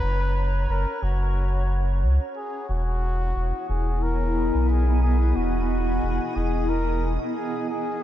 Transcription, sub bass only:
0.03 0.66 F#1 medium
0.69 0.85 F#1 medium
1.02 2.04 F#1 medium
2.02 2.19 C#2 medium
2.69 3.33 E1 medium
3.36 3.52 E1 medium
3.69 4.51 E1 loud
4.54 5.33 B1 medium
5.36 6.00 E1 loud
6.03 6.19 E1 medium
6.36 7.18 E1 loud

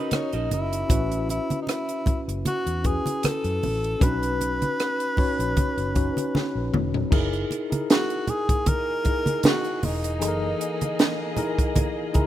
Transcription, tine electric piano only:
0.00 0.88 C#4 medium
0.00 0.92 D#4 medium
0.00 0.90 F#4 medium
0.00 0.92 A#4 medium
0.88 1.97 C#4 medium
0.88 1.97 E4 medium
0.88 1.97 F#4 medium
0.88 1.98 B4 medium
2.83 3.64 C#4 medium
2.83 3.64 E4 medium
2.83 3.65 F#4 medium
2.83 3.65 B4 medium
4.00 4.80 C#4 medium
4.00 4.08 D4 medium
4.00 4.81 F#4 medium
4.00 4.81 B4 loud
4.07 4.84 D#4 medium
5.17 5.72 C#4 medium
5.17 5.72 D#4 medium
5.17 5.72 F#4 medium
5.17 5.73 C#5 loud
5.94 6.75 C#4 medium
5.94 6.75 D#4 medium
5.94 6.75 F#4 medium
5.94 6.76 B4 medium
7.11 7.51 D#4 loud
7.11 7.52 E4 medium
7.11 7.52 G#4 medium
7.11 7.52 A#4 loud
7.70 8.62 D#4 medium
7.70 8.63 E4 medium
7.70 8.63 G#4 medium
7.70 8.63 A#4 medium
9.04 9.85 D#4 medium
9.04 9.85 E4 medium
9.04 9.85 G#4 medium
9.04 9.86 A#4 medium
10.19 11.01 E3 medium
10.19 11.00 D#4 medium
10.19 11.01 G#4 medium
10.19 10.29 A4 medium
10.28 11.05 A#4 loud
11.36 11.91 D#4 medium
11.36 11.91 E4 medium
11.36 11.92 G#4 medium
11.36 11.92 A#4 medium
12.13 12.27 D#4 medium
12.13 12.27 E4 medium
12.13 12.27 G#4 medium
12.13 12.27 A#4 medium
12.13 12.27 A#5 medium

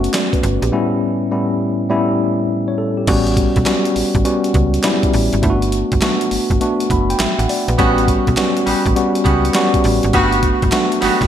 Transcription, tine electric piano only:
0.00 0.74 A3 medium
0.00 0.72 B3 medium
0.00 0.73 C#4 medium
0.00 0.75 F#4 medium
0.14 0.32 D5 medium
0.33 0.61 B4 medium
0.63 0.90 G4 medium
0.72 1.20 A2 medium
0.72 1.20 G3 medium
0.72 1.20 B3 medium
0.72 1.20 C#4 medium
0.72 1.20 E4 loud
1.31 1.79 A2 medium
1.31 1.79 G3 medium
1.31 1.79 B3 medium
1.31 1.79 C#4 medium
1.31 1.79 E4 medium
1.89 2.37 A2 medium
1.89 2.37 G3 medium
1.89 2.38 B3 medium
1.89 2.38 C#4 medium
1.89 2.38 E4 loud
2.68 2.78 C#5 medium
2.78 2.97 A4 medium
2.97 3.25 G4 medium
3.07 3.55 G3 medium
3.07 3.55 B3 medium
3.07 3.55 C#4 medium
3.07 3.55 F#4 loud
3.65 4.14 G3 medium
3.65 4.14 B3 medium
3.65 4.14 C#4 medium
3.65 4.14 F#4 medium
4.24 4.72 G3 medium
4.24 4.73 B3 medium
4.24 4.73 C#4 medium
4.24 4.73 F#4 medium
4.84 5.31 G3 medium
4.84 5.32 B3 medium
4.84 5.32 C#4 medium
4.84 5.32 E4 loud
5.42 5.90 A3 medium
5.42 5.90 B3 medium
5.42 5.90 D4 medium
5.42 5.52 E4 medium
5.50 5.94 F#4 loud
6.02 6.49 A3 medium
6.02 6.50 B3 medium
6.02 6.50 D4 medium
6.02 6.50 F#4 medium
6.61 7.08 A3 medium
6.61 7.08 B3 medium
6.61 7.09 D4 medium
6.61 7.09 F#4 medium
6.91 7.09 B5 medium
7.10 7.19 G5 medium
7.20 7.38 E5 medium
7.39 7.49 F#5 medium
7.49 7.68 D5 medium
7.69 7.96 B4 medium
7.78 8.26 G3 medium
7.78 8.26 B3 medium
7.78 8.26 C#4 medium
7.78 8.26 F#4 medium
8.37 8.85 G3 medium
8.37 8.85 B3 medium
8.37 8.85 C#4 medium
8.37 8.85 F#4 medium
8.96 9.43 G3 medium
8.96 9.44 B3 medium
8.96 9.44 C#4 medium
8.96 9.44 F#4 medium
9.55 10.02 G3 loud
9.55 10.03 B3 medium
9.55 10.03 C#4 medium
9.55 10.03 F#4 loud
10.13 10.61 A3 medium
10.13 10.61 B3 medium
10.13 10.61 D4 medium
10.13 10.62 F#4 medium
10.72 11.20 A3 medium
10.72 11.20 B3 medium
10.72 11.20 D4 medium
10.72 11.20 F#4 medium

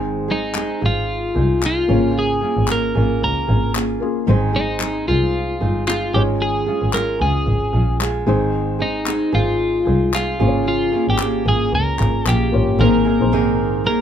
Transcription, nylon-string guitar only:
0.00 0.29 G#2 medium
0.00 0.29 D#3 medium
0.00 0.29 G#3 medium
0.00 0.29 C4 medium
0.00 0.28 D#4 medium
0.00 0.27 G#4 medium
0.28 0.53 G#3 soft
0.28 0.54 C4 soft
0.28 0.55 D#4 soft
0.28 0.55 G#4 medium
0.54 0.81 G#3 medium
0.54 0.82 C4 medium
0.54 0.81 D#4 medium
0.54 0.80 G#4 medium
0.81 1.36 G#3 soft
0.81 1.35 C4 soft
0.81 1.34 D#4 medium
0.81 1.33 G#4 soft
1.34 1.60 G#3 soft
1.34 1.62 C4 soft
1.34 1.62 D#4 soft
1.34 1.61 G#4 soft
1.62 1.88 G#3 soft
1.62 1.89 C4 medium
1.62 1.89 D#4 medium
1.62 1.87 G#4 medium
1.88 2.43 G#2 soft
1.88 2.43 C#3 medium
1.88 2.43 A#3 medium
1.88 2.42 C#4 medium
1.88 2.41 F4 medium
1.88 2.41 G#4 medium
2.41 2.66 A#3 soft
2.41 2.67 C#4 soft
2.41 2.69 F4 soft
2.41 2.68 G#4 soft
2.68 2.95 A#3 medium
2.68 2.95 C#4 medium
2.68 2.95 F4 medium
2.68 2.94 G#4 medium
2.95 3.49 A#3 soft
2.95 3.48 C#4 soft
2.95 3.47 F4 soft
2.95 3.47 G#4 medium
3.47 3.73 A#3 soft
3.47 3.74 C#4 soft
3.47 3.75 F4 soft
3.47 3.74 G#4 soft
3.74 4.27 A#3 soft
3.74 4.28 C#4 medium
3.74 4.28 F4 soft
3.74 4.28 G#4 medium
4.27 4.54 G#2 medium
4.27 4.54 D#3 medium
4.27 4.55 G#3 medium
4.27 4.54 C4 medium
4.27 4.53 D#4 loud
4.27 4.52 G#4 medium
4.53 4.79 G#3 soft
4.53 4.80 C4 soft
4.53 4.81 D#4 soft
4.53 4.81 G#4 medium
4.80 5.07 G#3 medium
4.80 5.08 C4 medium
4.80 5.08 D#4 medium
4.80 5.07 G#4 medium
5.08 5.63 G#3 soft
5.08 5.61 C4 soft
5.08 5.61 D#4 soft
5.08 5.60 G#4 soft
5.60 5.85 G#3 soft
5.60 5.87 C4 soft
5.60 5.88 D#4 soft
5.60 5.88 G#4 soft
5.87 6.14 G#3 soft
5.87 6.14 C4 medium
5.87 6.14 D#4 medium
5.87 6.12 G#4 medium
6.14 6.68 G#2 medium
6.14 6.71 D#3 medium
6.14 6.69 G#3 medium
6.14 6.67 C#4 medium
6.14 6.66 F4 medium
6.14 6.66 G#4 medium
6.66 6.92 G#3 soft
6.66 6.93 C#4 soft
6.66 6.94 F4 medium
6.66 6.94 G#4 soft
6.93 7.20 G#3 medium
6.93 7.21 C#4 medium
6.93 7.20 F4 medium
6.93 7.18 G#4 medium
7.19 7.75 G#3 soft
7.19 7.74 C#4 soft
7.19 7.73 F4 soft
7.19 7.73 G#4 soft
7.73 7.98 G#3 soft
7.73 8.00 C#4 soft
7.73 8.00 F4 soft
7.73 8.00 G#4 soft
8.00 8.26 G#3 medium
8.00 8.27 C#4 medium
8.00 8.27 F4 medium
8.00 8.25 G#4 medium
8.26 8.81 G#2 medium
8.26 8.81 D#3 medium
8.26 8.81 G#3 medium
8.26 8.80 C4 medium
8.26 8.79 D#4 medium
8.26 8.78 G#4 medium
8.79 9.04 G#3 soft
8.79 9.05 C4 soft
8.79 9.07 D#4 medium
8.79 9.06 G#4 soft
9.06 9.33 G#3 medium
9.06 9.33 C4 medium
9.06 9.32 D#4 medium
9.06 9.31 G#4 medium
9.32 9.87 G#3 soft
9.32 9.86 C4 soft
9.32 9.85 D#4 soft
9.32 9.84 G#4 medium
9.85 10.11 G#3 soft
9.85 10.12 C4 soft
9.85 10.13 D#4 soft
9.85 10.13 G#4 soft
10.12 10.39 G#3 medium
10.12 10.40 C4 medium
10.12 10.40 D#4 medium
10.12 10.39 G#4 medium
10.40 10.94 G#2 soft
10.40 10.94 C#3 medium
10.40 10.94 A#3 medium
10.40 10.93 C#4 medium
10.40 10.92 F4 medium
10.40 10.92 G#4 medium
10.92 11.18 A#3 soft
10.92 11.19 C#4 soft
10.92 11.20 F4 soft
10.92 11.19 G#4 soft
11.19 11.46 A#3 medium
11.19 11.46 C#4 medium
11.19 11.45 F4 medium
11.19 11.44 G#4 medium
11.45 12.02 A#3 soft
11.45 12.00 C#4 soft
11.45 11.99 F4 medium
11.45 11.99 G#4 medium
11.99 12.24 A#3 soft
11.99 12.26 C#4 soft
11.99 12.26 F4 soft
11.99 12.26 G#4 soft
12.26 12.79 A#3 medium
12.26 12.79 C#4 medium
12.26 12.80 F4 medium
12.79 13.05 G#2 medium
12.79 13.06 D#3 medium
12.79 13.06 A#3 medium
12.79 13.06 C4 medium
12.79 13.05 D#4 medium
12.79 13.04 G#4 medium
13.05 13.31 A#3 medium
13.05 13.32 C4 soft
13.05 13.32 D#4 medium
13.05 13.32 G#4 medium
13.32 13.85 G#2 medium
13.32 13.85 D#3 medium
13.32 13.83 A#3 medium
13.32 13.85 C4 medium
13.32 13.85 D#4 medium
13.32 13.87 G#4 medium
13.84 14.01 A#3 medium
13.84 14.01 C4 medium
13.84 14.01 D#4 medium
13.84 14.01 G#4 medium

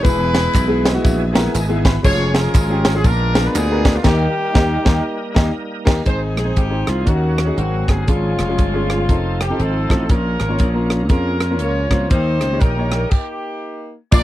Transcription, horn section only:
0.04 1.00 E4 medium
0.04 1.00 G#4 medium
0.04 1.04 B4 loud
2.04 2.35 F4 medium
2.04 2.95 G#4 medium
2.04 2.34 C#5 loud
2.36 3.01 C#4 medium
2.36 3.01 F4 medium
2.36 2.96 A#4 loud
2.96 3.05 G#4 loud
3.05 3.55 D4 medium
3.05 3.95 F4 medium
3.05 3.46 A#4 loud
3.47 3.56 B4 medium
3.56 4.02 B3 medium
3.56 4.02 D4 medium
3.56 3.96 G#4 loud
3.96 4.06 F4 medium
4.07 5.53 A#3 medium
4.07 5.53 D#4 medium
4.07 5.57 G4 loud
6.07 7.03 D#4 medium
6.07 6.37 G#4 medium
6.07 6.21 C5 medium
6.39 6.56 G#4 medium
6.58 6.88 G4 medium
6.88 7.06 F4 medium
7.07 7.54 A#3 medium
7.07 7.54 C#4 medium
7.07 7.58 F#4 medium
7.58 8.04 A#3 medium
7.58 8.04 C4 medium
7.58 7.87 F#4 medium
7.91 8.09 G#4 medium
8.09 9.36 G#3 medium
8.09 9.36 C#4 medium
8.09 9.41 F4 medium
9.42 9.60 G4 medium
9.60 10.06 C4 medium
9.60 10.06 D#4 medium
9.60 10.11 A4 medium
10.10 11.07 C#4 medium
10.10 11.07 F4 medium
10.10 10.86 A#4 medium
11.10 12.08 C#4 medium
11.10 11.60 F4 medium
11.10 11.57 A#4 medium
11.61 12.08 F4 medium
11.61 12.08 A#4 medium
11.61 12.08 C#5 medium
12.10 12.62 D#4 medium
12.10 12.61 G4 medium
12.10 12.61 C5 medium
12.60 13.11 D#4 medium
12.60 13.10 G4 medium
12.60 13.11 A#4 medium
13.11 13.95 A#3 medium
13.11 13.95 D#4 medium
13.11 13.92 G4 medium
14.12 14.23 F4 medium
14.12 14.23 A#4 medium
14.12 14.23 D5 loud

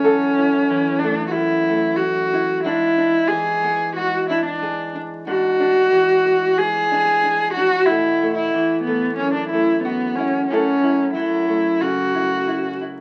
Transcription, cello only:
0.00 1.00 C#4 loud
0.99 1.26 D4 medium
1.27 1.97 E4 medium
1.27 1.33 F#4 medium
1.96 2.63 F#4 medium
2.64 3.29 E4 medium
3.27 3.95 G#4 loud
3.96 4.27 F#4 medium
4.29 4.44 E4 medium
4.46 4.91 D4 medium
5.28 6.60 F#4 loud
6.58 7.53 G#4 loud
7.54 7.87 F#4 loud
7.86 8.34 E4 medium
8.34 8.81 E4 medium
8.84 9.15 B3 medium
9.16 9.33 C#4 medium
9.34 9.49 D4 medium
9.50 9.81 E4 medium
9.83 10.17 B3 medium
10.15 10.47 C#4 medium
10.47 11.10 C#4 medium
11.14 11.82 E4 medium
11.80 12.79 F#4 medium

